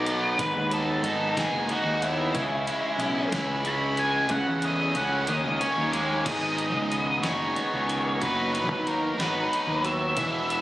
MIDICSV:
0, 0, Header, 1, 6, 480
1, 0, Start_track
1, 0, Tempo, 651466
1, 294, Time_signature, 6, 3, 24, 8
1, 7820, End_track
2, 0, Start_track
2, 0, Title_t, "Lead electric guitar"
2, 0, Program_c, 0, 29
2, 0, Note_on_c, 0, 74, 83
2, 278, Note_off_c, 0, 74, 0
2, 292, Note_on_c, 0, 71, 87
2, 525, Note_off_c, 0, 71, 0
2, 542, Note_on_c, 0, 69, 78
2, 1003, Note_off_c, 0, 69, 0
2, 1023, Note_on_c, 0, 68, 89
2, 1251, Note_off_c, 0, 68, 0
2, 1266, Note_on_c, 0, 66, 97
2, 1492, Note_off_c, 0, 66, 0
2, 1500, Note_on_c, 0, 64, 93
2, 2427, Note_off_c, 0, 64, 0
2, 2706, Note_on_c, 0, 83, 95
2, 2931, Note_off_c, 0, 83, 0
2, 2941, Note_on_c, 0, 80, 84
2, 3169, Note_off_c, 0, 80, 0
2, 3177, Note_on_c, 0, 78, 88
2, 3407, Note_off_c, 0, 78, 0
2, 3426, Note_on_c, 0, 75, 84
2, 3651, Note_off_c, 0, 75, 0
2, 3660, Note_on_c, 0, 78, 88
2, 3888, Note_off_c, 0, 78, 0
2, 3900, Note_on_c, 0, 75, 87
2, 4124, Note_off_c, 0, 75, 0
2, 4127, Note_on_c, 0, 73, 83
2, 4359, Note_off_c, 0, 73, 0
2, 4362, Note_on_c, 0, 75, 85
2, 4368, Note_on_c, 0, 68, 94
2, 4594, Note_off_c, 0, 75, 0
2, 4602, Note_off_c, 0, 68, 0
2, 4603, Note_on_c, 0, 75, 82
2, 5319, Note_off_c, 0, 75, 0
2, 5322, Note_on_c, 0, 73, 88
2, 6062, Note_on_c, 0, 71, 79
2, 6069, Note_off_c, 0, 73, 0
2, 6283, Note_off_c, 0, 71, 0
2, 6292, Note_on_c, 0, 71, 78
2, 6540, Note_off_c, 0, 71, 0
2, 6547, Note_on_c, 0, 70, 89
2, 6779, Note_off_c, 0, 70, 0
2, 6782, Note_on_c, 0, 71, 95
2, 7261, Note_on_c, 0, 76, 111
2, 7273, Note_off_c, 0, 71, 0
2, 7820, Note_off_c, 0, 76, 0
2, 7820, End_track
3, 0, Start_track
3, 0, Title_t, "Overdriven electric guitar"
3, 0, Program_c, 1, 29
3, 0, Note_on_c, 1, 51, 77
3, 37, Note_on_c, 1, 63, 77
3, 52, Note_on_c, 1, 59, 66
3, 62, Note_on_c, 1, 54, 59
3, 270, Note_off_c, 1, 51, 0
3, 271, Note_off_c, 1, 63, 0
3, 271, Note_on_c, 1, 44, 91
3, 278, Note_off_c, 1, 59, 0
3, 283, Note_off_c, 1, 54, 0
3, 285, Note_on_c, 1, 51, 93
3, 290, Note_on_c, 1, 56, 101
3, 296, Note_on_c, 1, 59, 110
3, 302, Note_on_c, 1, 63, 110
3, 507, Note_off_c, 1, 63, 0
3, 516, Note_on_c, 1, 63, 71
3, 519, Note_off_c, 1, 59, 0
3, 528, Note_on_c, 1, 59, 65
3, 539, Note_off_c, 1, 56, 0
3, 542, Note_on_c, 1, 56, 56
3, 746, Note_off_c, 1, 51, 0
3, 755, Note_off_c, 1, 59, 0
3, 755, Note_on_c, 1, 51, 75
3, 757, Note_off_c, 1, 56, 0
3, 760, Note_on_c, 1, 56, 80
3, 761, Note_off_c, 1, 44, 0
3, 764, Note_on_c, 1, 59, 80
3, 766, Note_off_c, 1, 63, 0
3, 775, Note_on_c, 1, 63, 81
3, 981, Note_off_c, 1, 63, 0
3, 989, Note_on_c, 1, 63, 76
3, 992, Note_off_c, 1, 59, 0
3, 1001, Note_on_c, 1, 59, 59
3, 1008, Note_off_c, 1, 56, 0
3, 1017, Note_on_c, 1, 56, 56
3, 1222, Note_off_c, 1, 51, 0
3, 1231, Note_on_c, 1, 51, 73
3, 1236, Note_off_c, 1, 56, 0
3, 1241, Note_off_c, 1, 59, 0
3, 1245, Note_on_c, 1, 56, 72
3, 1249, Note_off_c, 1, 63, 0
3, 1250, Note_on_c, 1, 59, 74
3, 1258, Note_on_c, 1, 63, 87
3, 1471, Note_off_c, 1, 63, 0
3, 1479, Note_off_c, 1, 59, 0
3, 1480, Note_on_c, 1, 63, 83
3, 1488, Note_on_c, 1, 59, 71
3, 1494, Note_off_c, 1, 56, 0
3, 1503, Note_on_c, 1, 56, 63
3, 1707, Note_off_c, 1, 51, 0
3, 1711, Note_off_c, 1, 63, 0
3, 1713, Note_on_c, 1, 49, 97
3, 1715, Note_off_c, 1, 59, 0
3, 1716, Note_off_c, 1, 56, 0
3, 1725, Note_on_c, 1, 56, 100
3, 1729, Note_on_c, 1, 61, 106
3, 1737, Note_on_c, 1, 64, 101
3, 1946, Note_off_c, 1, 64, 0
3, 1955, Note_on_c, 1, 64, 72
3, 1967, Note_off_c, 1, 61, 0
3, 1970, Note_on_c, 1, 61, 69
3, 1971, Note_off_c, 1, 56, 0
3, 1980, Note_on_c, 1, 56, 66
3, 2188, Note_off_c, 1, 49, 0
3, 2196, Note_off_c, 1, 56, 0
3, 2196, Note_on_c, 1, 49, 70
3, 2205, Note_on_c, 1, 56, 83
3, 2211, Note_off_c, 1, 61, 0
3, 2214, Note_on_c, 1, 61, 82
3, 2215, Note_off_c, 1, 64, 0
3, 2224, Note_on_c, 1, 64, 88
3, 2435, Note_off_c, 1, 64, 0
3, 2442, Note_off_c, 1, 61, 0
3, 2444, Note_on_c, 1, 64, 73
3, 2451, Note_on_c, 1, 61, 67
3, 2457, Note_off_c, 1, 56, 0
3, 2466, Note_on_c, 1, 56, 58
3, 2665, Note_off_c, 1, 49, 0
3, 2673, Note_on_c, 1, 49, 81
3, 2679, Note_off_c, 1, 56, 0
3, 2685, Note_off_c, 1, 61, 0
3, 2688, Note_on_c, 1, 56, 82
3, 2694, Note_on_c, 1, 61, 83
3, 2695, Note_off_c, 1, 64, 0
3, 2704, Note_on_c, 1, 64, 86
3, 2917, Note_off_c, 1, 64, 0
3, 2926, Note_on_c, 1, 64, 74
3, 2935, Note_off_c, 1, 61, 0
3, 2944, Note_off_c, 1, 56, 0
3, 2944, Note_on_c, 1, 61, 68
3, 2953, Note_on_c, 1, 56, 68
3, 3147, Note_off_c, 1, 49, 0
3, 3154, Note_off_c, 1, 64, 0
3, 3163, Note_off_c, 1, 61, 0
3, 3163, Note_on_c, 1, 49, 94
3, 3167, Note_off_c, 1, 56, 0
3, 3175, Note_on_c, 1, 57, 104
3, 3182, Note_on_c, 1, 61, 107
3, 3190, Note_on_c, 1, 64, 102
3, 3394, Note_off_c, 1, 64, 0
3, 3403, Note_on_c, 1, 64, 70
3, 3410, Note_off_c, 1, 61, 0
3, 3418, Note_off_c, 1, 57, 0
3, 3419, Note_on_c, 1, 61, 65
3, 3427, Note_on_c, 1, 57, 60
3, 3636, Note_off_c, 1, 49, 0
3, 3645, Note_on_c, 1, 49, 76
3, 3650, Note_off_c, 1, 57, 0
3, 3657, Note_off_c, 1, 61, 0
3, 3658, Note_on_c, 1, 57, 84
3, 3665, Note_off_c, 1, 64, 0
3, 3666, Note_on_c, 1, 61, 85
3, 3674, Note_on_c, 1, 64, 91
3, 3873, Note_off_c, 1, 49, 0
3, 3880, Note_off_c, 1, 57, 0
3, 3880, Note_off_c, 1, 64, 0
3, 3883, Note_on_c, 1, 67, 91
3, 3884, Note_off_c, 1, 61, 0
3, 3894, Note_on_c, 1, 61, 78
3, 3902, Note_on_c, 1, 58, 80
3, 3903, Note_on_c, 1, 51, 80
3, 4122, Note_off_c, 1, 51, 0
3, 4131, Note_on_c, 1, 51, 75
3, 4132, Note_off_c, 1, 58, 0
3, 4141, Note_on_c, 1, 58, 78
3, 4145, Note_off_c, 1, 61, 0
3, 4151, Note_off_c, 1, 67, 0
3, 4154, Note_on_c, 1, 61, 83
3, 4160, Note_on_c, 1, 67, 75
3, 4360, Note_off_c, 1, 67, 0
3, 4369, Note_on_c, 1, 67, 84
3, 4376, Note_off_c, 1, 61, 0
3, 4383, Note_off_c, 1, 58, 0
3, 4385, Note_on_c, 1, 61, 68
3, 4392, Note_on_c, 1, 58, 63
3, 4596, Note_off_c, 1, 67, 0
3, 4597, Note_off_c, 1, 51, 0
3, 4603, Note_off_c, 1, 61, 0
3, 4607, Note_off_c, 1, 58, 0
3, 4624, Note_on_c, 1, 44, 72
3, 5093, Note_on_c, 1, 59, 65
3, 5336, Note_on_c, 1, 63, 76
3, 5558, Note_off_c, 1, 59, 0
3, 5561, Note_on_c, 1, 59, 67
3, 5803, Note_on_c, 1, 51, 70
3, 5818, Note_off_c, 1, 44, 0
3, 6048, Note_off_c, 1, 51, 0
3, 6054, Note_off_c, 1, 63, 0
3, 6054, Note_on_c, 1, 54, 80
3, 6522, Note_off_c, 1, 59, 0
3, 6525, Note_on_c, 1, 63, 68
3, 6756, Note_on_c, 1, 66, 71
3, 7004, Note_off_c, 1, 63, 0
3, 7013, Note_on_c, 1, 63, 70
3, 7235, Note_off_c, 1, 54, 0
3, 7244, Note_on_c, 1, 54, 74
3, 7478, Note_off_c, 1, 54, 0
3, 7481, Note_on_c, 1, 52, 81
3, 7486, Note_off_c, 1, 66, 0
3, 7494, Note_off_c, 1, 63, 0
3, 7820, Note_off_c, 1, 52, 0
3, 7820, End_track
4, 0, Start_track
4, 0, Title_t, "Overdriven electric guitar"
4, 0, Program_c, 2, 29
4, 0, Note_on_c, 2, 63, 73
4, 0, Note_on_c, 2, 66, 75
4, 56, Note_on_c, 2, 59, 73
4, 289, Note_off_c, 2, 63, 0
4, 293, Note_off_c, 2, 66, 0
4, 295, Note_off_c, 2, 59, 0
4, 301, Note_on_c, 2, 44, 71
4, 543, Note_on_c, 2, 59, 62
4, 778, Note_on_c, 2, 63, 73
4, 1016, Note_on_c, 2, 68, 71
4, 1249, Note_off_c, 2, 63, 0
4, 1258, Note_on_c, 2, 63, 75
4, 1493, Note_off_c, 2, 59, 0
4, 1496, Note_off_c, 2, 44, 0
4, 1502, Note_on_c, 2, 59, 65
4, 1734, Note_off_c, 2, 68, 0
4, 1735, Note_off_c, 2, 63, 0
4, 1737, Note_off_c, 2, 59, 0
4, 1737, Note_on_c, 2, 49, 75
4, 1979, Note_on_c, 2, 56, 65
4, 2222, Note_on_c, 2, 61, 68
4, 2462, Note_on_c, 2, 64, 74
4, 2686, Note_off_c, 2, 61, 0
4, 2695, Note_on_c, 2, 61, 70
4, 2922, Note_off_c, 2, 56, 0
4, 2931, Note_on_c, 2, 56, 75
4, 2934, Note_off_c, 2, 49, 0
4, 3171, Note_off_c, 2, 56, 0
4, 3173, Note_off_c, 2, 61, 0
4, 3176, Note_off_c, 2, 64, 0
4, 3178, Note_on_c, 2, 49, 74
4, 3423, Note_on_c, 2, 57, 73
4, 3653, Note_on_c, 2, 61, 78
4, 3891, Note_on_c, 2, 51, 73
4, 3892, Note_off_c, 2, 61, 0
4, 3894, Note_off_c, 2, 49, 0
4, 3897, Note_off_c, 2, 57, 0
4, 4132, Note_on_c, 2, 61, 71
4, 4376, Note_on_c, 2, 58, 75
4, 4611, Note_off_c, 2, 51, 0
4, 4611, Note_off_c, 2, 61, 0
4, 4614, Note_off_c, 2, 58, 0
4, 4614, Note_on_c, 2, 44, 82
4, 4622, Note_on_c, 2, 51, 77
4, 4626, Note_on_c, 2, 56, 90
4, 4634, Note_on_c, 2, 59, 87
4, 4636, Note_on_c, 2, 63, 90
4, 4640, Note_on_c, 2, 68, 99
4, 5317, Note_off_c, 2, 68, 0
4, 5318, Note_off_c, 2, 44, 0
4, 5322, Note_off_c, 2, 51, 0
4, 5325, Note_off_c, 2, 56, 0
4, 5326, Note_on_c, 2, 68, 72
4, 5327, Note_off_c, 2, 63, 0
4, 5330, Note_on_c, 2, 63, 76
4, 5331, Note_off_c, 2, 59, 0
4, 5334, Note_on_c, 2, 59, 71
4, 5340, Note_on_c, 2, 56, 73
4, 5345, Note_on_c, 2, 51, 66
4, 5350, Note_on_c, 2, 44, 58
4, 6035, Note_off_c, 2, 68, 0
4, 6037, Note_off_c, 2, 63, 0
4, 6042, Note_off_c, 2, 56, 0
4, 6045, Note_off_c, 2, 51, 0
4, 6045, Note_on_c, 2, 54, 77
4, 6047, Note_off_c, 2, 44, 0
4, 6053, Note_off_c, 2, 59, 0
4, 6056, Note_on_c, 2, 59, 84
4, 6060, Note_on_c, 2, 63, 92
4, 6070, Note_on_c, 2, 66, 102
4, 6755, Note_off_c, 2, 54, 0
4, 6757, Note_off_c, 2, 66, 0
4, 6763, Note_off_c, 2, 63, 0
4, 6766, Note_on_c, 2, 66, 78
4, 6774, Note_on_c, 2, 63, 76
4, 6779, Note_off_c, 2, 59, 0
4, 6782, Note_on_c, 2, 59, 70
4, 6790, Note_on_c, 2, 54, 68
4, 7476, Note_off_c, 2, 66, 0
4, 7480, Note_off_c, 2, 63, 0
4, 7484, Note_off_c, 2, 59, 0
4, 7488, Note_off_c, 2, 54, 0
4, 7491, Note_on_c, 2, 40, 87
4, 7493, Note_on_c, 2, 47, 86
4, 7501, Note_on_c, 2, 52, 85
4, 7503, Note_on_c, 2, 56, 89
4, 7506, Note_on_c, 2, 59, 91
4, 7511, Note_on_c, 2, 64, 94
4, 7820, Note_off_c, 2, 40, 0
4, 7820, Note_off_c, 2, 47, 0
4, 7820, Note_off_c, 2, 52, 0
4, 7820, Note_off_c, 2, 56, 0
4, 7820, Note_off_c, 2, 59, 0
4, 7820, Note_off_c, 2, 64, 0
4, 7820, End_track
5, 0, Start_track
5, 0, Title_t, "Fingered electric bass"
5, 0, Program_c, 3, 33
5, 0, Note_on_c, 3, 35, 94
5, 260, Note_off_c, 3, 35, 0
5, 284, Note_on_c, 3, 32, 112
5, 401, Note_off_c, 3, 32, 0
5, 408, Note_on_c, 3, 39, 88
5, 747, Note_off_c, 3, 39, 0
5, 755, Note_on_c, 3, 32, 90
5, 1100, Note_off_c, 3, 32, 0
5, 1122, Note_on_c, 3, 30, 87
5, 1239, Note_off_c, 3, 30, 0
5, 1354, Note_on_c, 3, 39, 93
5, 1699, Note_off_c, 3, 39, 0
5, 1728, Note_on_c, 3, 37, 102
5, 1954, Note_off_c, 3, 37, 0
5, 2198, Note_on_c, 3, 35, 92
5, 2429, Note_off_c, 3, 35, 0
5, 2443, Note_on_c, 3, 37, 100
5, 3137, Note_off_c, 3, 37, 0
5, 3166, Note_on_c, 3, 37, 120
5, 3281, Note_off_c, 3, 37, 0
5, 3300, Note_on_c, 3, 40, 87
5, 3633, Note_off_c, 3, 40, 0
5, 3648, Note_on_c, 3, 37, 89
5, 3874, Note_off_c, 3, 37, 0
5, 3891, Note_on_c, 3, 39, 104
5, 4003, Note_off_c, 3, 39, 0
5, 4016, Note_on_c, 3, 37, 86
5, 4126, Note_off_c, 3, 37, 0
5, 4257, Note_on_c, 3, 39, 89
5, 4591, Note_off_c, 3, 39, 0
5, 4614, Note_on_c, 3, 32, 108
5, 4967, Note_off_c, 3, 32, 0
5, 4967, Note_on_c, 3, 37, 75
5, 5306, Note_off_c, 3, 37, 0
5, 5325, Note_on_c, 3, 30, 79
5, 5553, Note_off_c, 3, 30, 0
5, 5699, Note_on_c, 3, 37, 94
5, 6033, Note_off_c, 3, 37, 0
5, 6052, Note_on_c, 3, 30, 111
5, 6401, Note_off_c, 3, 30, 0
5, 6401, Note_on_c, 3, 39, 79
5, 6744, Note_off_c, 3, 39, 0
5, 6758, Note_on_c, 3, 32, 87
5, 6990, Note_off_c, 3, 32, 0
5, 7125, Note_on_c, 3, 39, 99
5, 7467, Note_off_c, 3, 39, 0
5, 7490, Note_on_c, 3, 28, 109
5, 7820, Note_off_c, 3, 28, 0
5, 7820, End_track
6, 0, Start_track
6, 0, Title_t, "Drums"
6, 48, Note_on_c, 9, 42, 68
6, 122, Note_off_c, 9, 42, 0
6, 289, Note_on_c, 9, 36, 104
6, 289, Note_on_c, 9, 42, 94
6, 362, Note_off_c, 9, 36, 0
6, 363, Note_off_c, 9, 42, 0
6, 527, Note_on_c, 9, 42, 71
6, 600, Note_off_c, 9, 42, 0
6, 765, Note_on_c, 9, 42, 72
6, 839, Note_off_c, 9, 42, 0
6, 1009, Note_on_c, 9, 36, 75
6, 1011, Note_on_c, 9, 42, 96
6, 1012, Note_on_c, 9, 38, 111
6, 1082, Note_off_c, 9, 36, 0
6, 1085, Note_off_c, 9, 42, 0
6, 1086, Note_off_c, 9, 38, 0
6, 1246, Note_on_c, 9, 42, 63
6, 1320, Note_off_c, 9, 42, 0
6, 1490, Note_on_c, 9, 42, 58
6, 1564, Note_off_c, 9, 42, 0
6, 1729, Note_on_c, 9, 36, 108
6, 1730, Note_on_c, 9, 42, 84
6, 1803, Note_off_c, 9, 36, 0
6, 1803, Note_off_c, 9, 42, 0
6, 1970, Note_on_c, 9, 42, 66
6, 2044, Note_off_c, 9, 42, 0
6, 2208, Note_on_c, 9, 42, 65
6, 2281, Note_off_c, 9, 42, 0
6, 2449, Note_on_c, 9, 36, 80
6, 2449, Note_on_c, 9, 42, 92
6, 2450, Note_on_c, 9, 38, 118
6, 2523, Note_off_c, 9, 36, 0
6, 2523, Note_off_c, 9, 42, 0
6, 2524, Note_off_c, 9, 38, 0
6, 2688, Note_on_c, 9, 42, 69
6, 2762, Note_off_c, 9, 42, 0
6, 2928, Note_on_c, 9, 42, 63
6, 3001, Note_off_c, 9, 42, 0
6, 3161, Note_on_c, 9, 42, 93
6, 3166, Note_on_c, 9, 36, 100
6, 3234, Note_off_c, 9, 42, 0
6, 3240, Note_off_c, 9, 36, 0
6, 3405, Note_on_c, 9, 42, 70
6, 3478, Note_off_c, 9, 42, 0
6, 3647, Note_on_c, 9, 42, 75
6, 3720, Note_off_c, 9, 42, 0
6, 3885, Note_on_c, 9, 42, 106
6, 3958, Note_off_c, 9, 42, 0
6, 4133, Note_on_c, 9, 42, 71
6, 4207, Note_off_c, 9, 42, 0
6, 4373, Note_on_c, 9, 42, 71
6, 4446, Note_off_c, 9, 42, 0
6, 4611, Note_on_c, 9, 36, 97
6, 4612, Note_on_c, 9, 42, 87
6, 4612, Note_on_c, 9, 49, 101
6, 4685, Note_off_c, 9, 36, 0
6, 4686, Note_off_c, 9, 42, 0
6, 4686, Note_off_c, 9, 49, 0
6, 4852, Note_on_c, 9, 42, 66
6, 4925, Note_off_c, 9, 42, 0
6, 5096, Note_on_c, 9, 42, 68
6, 5169, Note_off_c, 9, 42, 0
6, 5330, Note_on_c, 9, 42, 88
6, 5331, Note_on_c, 9, 38, 108
6, 5404, Note_off_c, 9, 42, 0
6, 5405, Note_off_c, 9, 38, 0
6, 5573, Note_on_c, 9, 42, 63
6, 5647, Note_off_c, 9, 42, 0
6, 5817, Note_on_c, 9, 42, 55
6, 5890, Note_off_c, 9, 42, 0
6, 6053, Note_on_c, 9, 36, 104
6, 6053, Note_on_c, 9, 42, 83
6, 6127, Note_off_c, 9, 36, 0
6, 6127, Note_off_c, 9, 42, 0
6, 6298, Note_on_c, 9, 42, 62
6, 6372, Note_off_c, 9, 42, 0
6, 6535, Note_on_c, 9, 42, 64
6, 6609, Note_off_c, 9, 42, 0
6, 6777, Note_on_c, 9, 42, 91
6, 6778, Note_on_c, 9, 38, 110
6, 6851, Note_off_c, 9, 42, 0
6, 6852, Note_off_c, 9, 38, 0
6, 7023, Note_on_c, 9, 42, 65
6, 7096, Note_off_c, 9, 42, 0
6, 7254, Note_on_c, 9, 42, 63
6, 7328, Note_off_c, 9, 42, 0
6, 7491, Note_on_c, 9, 42, 92
6, 7494, Note_on_c, 9, 36, 104
6, 7564, Note_off_c, 9, 42, 0
6, 7568, Note_off_c, 9, 36, 0
6, 7739, Note_on_c, 9, 42, 73
6, 7812, Note_off_c, 9, 42, 0
6, 7820, End_track
0, 0, End_of_file